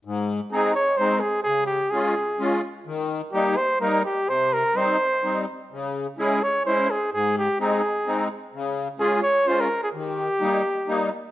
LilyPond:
<<
  \new Staff \with { instrumentName = "Flugelhorn" } { \time 3/4 \key aes \major \tempo 4 = 128 r4 aes'8 des''8 c''8 aes'8 | aes'8 g'8 aes'4. r8 | r4 g'8 c''8 bes'8 g'8 | c''8 bes'8 c''4. r8 |
r4 aes'8 des''8 c''8 aes'8 | aes'8 g'8 aes'4. r8 | r4 aes'8 des''8 c''16 bes'8 aes'16 | g'2~ g'8 r8 | }
  \new Staff \with { instrumentName = "Accordion" } { \time 3/4 \key aes \major aes,4 <aes c' ees'>8 r8 <aes c' ees'>8 r8 | des4 <aes des' f'>8 r8 <aes des' f'>8 r8 | ees4 <g bes ees'>8 r8 <g bes ees'>8 r8 | c4 <g c' ees'>8 r8 <g c' ees'>8 r8 |
des4 <aes des' fes'>8 r8 <aes des' fes'>8 r8 | aes,4 <aes c' ees'>8 r8 <aes c' ees'>8 r8 | des4 <aes des' f'>8 r8 <aes des' f'>8 r8 | ees4 <g bes ees'>8 r8 <g bes ees'>8 r8 | }
>>